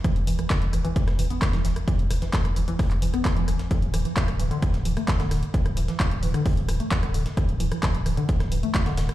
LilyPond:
<<
  \new Staff \with { instrumentName = "Synth arpeggio sound" } { \clef bass \time 4/4 \key d \dorian \tempo 4 = 131 e16 r16 e16 e16 d16 r16 e16 e16 r8 e16 b16 r16 e16 e16 r16 | e16 r16 e16 e16 d16 r16 e16 e16 r8 e16 b16 r16 e16 e16 r16 | d16 r16 e16 e16 c16 r16 e16 d16 r8 e16 a16 r16 d16 d16 r16 | d16 r16 e16 e16 c16 r16 e16 d16 r8 e16 a16 r16 d16 d16 r16 |
d16 r16 e16 e16 c16 r16 e16 d16 r8 e16 a16 r16 d16 d16 r16 | }
  \new Staff \with { instrumentName = "Sub bass" } { \clef bass \time 4/4 \key d \dorian r16 e,,16 e,,16 r8 e,,16 e,,16 r8 e,,16 e,,16 r8 e,,16 e,,16 r16 | r16 e,,16 e,,16 r8 e,,16 e,,16 r8 e,,16 e,,16 r8 e,,16 e,,16 r16 | r16 d,,16 d,,16 r8 d,,16 d,,16 r8 d,,16 d,,16 r8 d,,16 d,,16 r16 | r16 d,,16 d,,16 r8 d,,16 d,,16 r8 d,,16 d,,16 r8 d,,16 d,,16 r16 |
r16 d,,16 d,,16 r8 d,,16 d,,16 r8 d,,16 d,,16 r8 d,,16 d,,16 r16 | }
  \new DrumStaff \with { instrumentName = "Drums" } \drummode { \time 4/4 <hh bd ss>16 hh16 <hh hho>16 <hh ss>16 <hc hh bd sn>16 hh16 <hh hho ss>16 hh16 <hh bd>16 <hh ss sn>16 <hh hho>16 hh16 <hc hh bd ss sn>16 <hh sn>16 <hh hho sn>16 <hh ss>16 | <hh bd>16 hh16 <hh hho ss>16 <hh sn>16 <hc hh bd sn>16 <hh ss>16 <hh hho>16 hh16 <hh hho bd ss>16 <hc hh>16 <hh hho>16 <hh ss>16 <hc hh bd sn>16 hh16 <hh hho ss>16 <hh sn>16 | <hh bd>16 hh16 <hh hho ss>16 hh16 <hc hh bd sn>16 <hh ss>16 <hh hho>16 hh16 <hh bd ss>16 <hh sn>16 <hh hho>16 <hh ss>16 <hc hh bd sn>16 <hh sn>16 <hh hho ss sn>16 hh16 | <hh bd>16 <hh ss>16 <hh hho>16 <hh sn>16 <hc hh bd ss sn>16 hh16 <hh hho>16 <hh ss>16 <hh hho bd>16 hh16 <hh hho ss>16 hh16 <hc hh bd sn>16 <hh ss>16 <hh hho>16 <hh sn>16 |
<hh bd ss>16 hh16 <hh hho>16 <hh ss>16 <hc hh bd sn>16 hh16 <hh hho ss>16 hh16 <hh bd>16 <hh ss sn>16 <hh hho>16 hh16 <hc hh bd ss sn>16 <hh sn>16 <hh hho sn>16 <hh ss>16 | }
>>